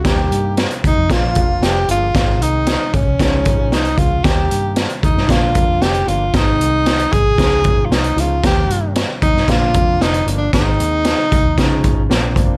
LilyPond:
<<
  \new Staff \with { instrumentName = "Tenor saxophone" } { \time 4/4 \key ees \major \tempo 4 = 114 g'4 r8 ees'8 f'4 g'8 f'8~ | f'8 ees'4 des'4. ees'8 f'8 | g'4 r8 ees'8 f'4 g'8 f'8 | ees'4. aes'4~ aes'16. f'32 ees'8 f'8 |
g'4 r8 ees'8 f'4 \tuplet 3/2 { ees'8. r16 d'8 } | ees'2. r4 | }
  \new Staff \with { instrumentName = "Grand piano" } { \time 4/4 \key ees \major <g bes ees' g'>4~ <g bes ees' g'>16 r8. <f bes d' f'>4 r8 <f bes d' aes'>8 | <ees aes c' ees'>4~ <ees aes c' ees'>16 r8. <f aes des' ees'>4 r8 <f aes des' f'>8 | <ees g bes ees'>4~ <ees g bes ees'>16 r8. <d f bes d'>4 r8 <d f bes d'>8 | <ees aes c' ees'>4~ <ees aes c' ees'>16 r8. <f aes des' ees'>4 r8 <f aes des' ees'>8 |
<ees g bes ees'>4~ <ees g bes ees'>16 r8. <d f bes d'>4 r8 <d f bes d'>8 | <ees aes c' ees'>4~ <ees aes c' ees'>16 r8. <f aes des' ees'>4 <f bes c' d'>8 <f bes c' d'>8 | }
  \new Staff \with { instrumentName = "Fingered electric bass" } { \clef bass \time 4/4 \key ees \major ees,8 g,8. r16 ees,16 f,16 bes,,8 f,,8 f,,8 g,,8 | aes,,8 c,8. r16 aes,,16 c,16 des,8 aes,,8 c,8 des,8 | ees,8 g,8. r16 ees,16 g,16 bes,8 f,8 f,,8 g,,8 | aes,,8 c,4 aes,,8 des,8 aes,,8 c,8 des,8 |
ees,8 g,8. r16 ees,16 g,16 bes,8 f,8 f,,8 g,,8 | aes,,8 ees,8. r16 c,16 ees,16 des8 aes,,8 bes,,8 g,,16 r16 | }
  \new DrumStaff \with { instrumentName = "Drums" } \drummode { \time 4/4 <hh bd sn>8 hh8 <hh sn>16 hh16 <hh bd>8 <hh bd sn>8 <hh bd>8 <hh sn>8 hh8 | <hh bd sn>8 hh8 <hh sn>8 <hh bd>8 <hh bd sn>8 <hh bd>8 <hh sn>16 hh16 <hh bd>8 | <hh bd sn>8 hh8 <hh sn>16 hh16 <hh bd>16 sn16 <hh bd sn>8 <hh bd>8 <hh sn>16 hh16 hh8 | <hh bd sn>8 hh8 <hh sn>16 hh16 <hh bd>8 <hh bd sn>8 <hh bd>8 <hh sn>16 hh16 hh8 |
<hh bd sn>8 hh8 <hh sn>8 <hh bd>16 sn16 <hh bd sn>8 <hh bd>8 <hh sn>16 hh16 hh8 | <hh bd sn>8 hh8 <hh sn>8 <hh bd>8 <hh bd sn>8 <hh bd>8 <hh sn>8 <hh bd>8 | }
>>